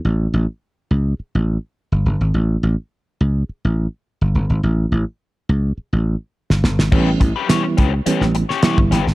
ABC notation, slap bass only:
X:1
M:4/4
L:1/16
Q:1/4=105
K:Amix
V:1 name="Slap bass" clef=bass
A,,,2 A,,, z3 C,,2 z A,,,2 z2 G,,, G,,, ^G,,, | A,,,2 A,,, z3 C,,2 z A,,,2 z2 G,,, G,,, ^G,,, | A,,,2 A,,, z3 C,,2 z A,,,2 z2 G,,, G,,, ^G,,, | A,,,2 A,,, z3 C,,2 z A,,,2 z2 G,,, G,,, ^G,,, |]